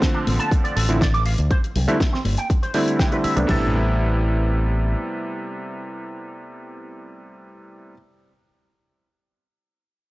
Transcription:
Already playing: D3 F3 A3 C4
0.02 kick, snare, closed hi-hat
0.14 D4
0.27 A1, open hi-hat, high conga
0.39 A5, closed hi-hat
0.51 kick, closed hi-hat
0.64 D5, closed hi-hat
0.76 A1 A4, open hi-hat
0.89 D3 F3 A3 C4 E4, closed hi-hat
1.01 D5, kick, snare, closed hi-hat
1.14 D6, closed hi-hat
1.26 F5, open hi-hat
1.38 D2, closed hi-hat
1.51 C5, kick, closed hi-hat
1.64 closed hi-hat
1.76 C2, open hi-hat, low conga
1.88 D3 G3 A3 C4 E4 E5, closed hi-hat, high conga
2.00 kick, snare, closed hi-hat
2.13 C4, snare
2.25 G1, open hi-hat, high conga
2.37 G5, closed hi-hat
2.50 kick, closed hi-hat
2.63 C5, closed hi-hat
2.74 D3 G3 A3 C4 E4 C5, open hi-hat
2.88 closed hi-hat
2.99 G5, kick, snare, closed hi-hat
3.12 D3 G3 A3 C4 E4 B4, closed hi-hat
3.24 E5, muted fingered electric bass stroke, open hi-hat
3.36 C2 C3 G3 A3 B3 D4, closed hi-hat, low conga
3.48 A1 C3 G3 A3 B3 E4 A4, kick, floor tom, open hi-hat

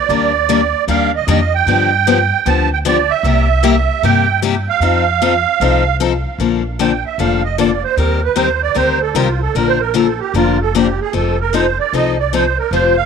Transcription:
Already playing: D5
0.09 D#2 D#3 G3 A#3 D4 G4
0.49 D#3 G3 A#3 D4 G4
0.88 D#2 D#3 G3 A#3 D4 G4 F5
1.16 D#5
1.27 F2 D#3 G3 A#3 D4 G4 D#5
1.54 G5
1.66 G2 D3 F3 B3 D4 G4
2.07 D3 F3 B3 D4 G4
2.46 D2 D3 F3 B3 D4 G4 A5
2.73 G5
2.85 D3 F3 B3 D4 G4 D5
3.10 E5
3.23 C2 C3 G3 A#3 E4 G4
3.63 C3 G3 A#3 E4 G4
4.03 G2 C3 G3 A#3 E4 G4 G5
4.42 C3 G3 A#3 E4 G4
4.69 F5
4.80 F2 F3 C4 D#4 A4
5.22 F3 C4 D#4 A4
5.60 C2 F3 C4 D#4 A4
6.00 F3 C4 D#4 A4
6.38 A#1 D3 F3 A#3 D4 A4
6.79 D3 F3 A#3 D4 A4 G5
7.06 E5
7.18 F1 D3 F3 A#3 D4 A4 F5
7.44 D#5
7.58 D3 F3 A#3 D4 A4 D5
7.84 C5
7.97 D#2 D#3 G3 C4 G4 A#4
8.24 B4
8.36 D#2 D#3 G3 C4 G4 A#4 C5
8.63 D5
8.75 D2 D#3 G3 C4 G4 A#4 C5
9.01 A4
9.15 C2 D#3 G3 C4 F4 G4 A#4
9.41 A4
9.55 A#1 D3 F3 A#3 D4 A#4
9.68 C5
9.81 A#4
9.94 D3 F3 A#3 D4 A4 A#4
10.20 G4
10.34 F1 D3 F3 A#3 D4 F4 A#4
10.62 A4
10.75 D3 F3 A#3 D4 G4 A#4
11.01 G#4
11.13 F1 F3 C4 D#4 A4
11.41 A#4
11.53 F3 C4 D#4 A4 C5
11.79 D5
11.93 C2 F3 C4 D#4 A4 D#5
12.19 D5
12.33 F3 C4 D#4 A4 C5
12.59 A#4
12.71 F1 F3 G3 C4 F4 C5
12.96 F5

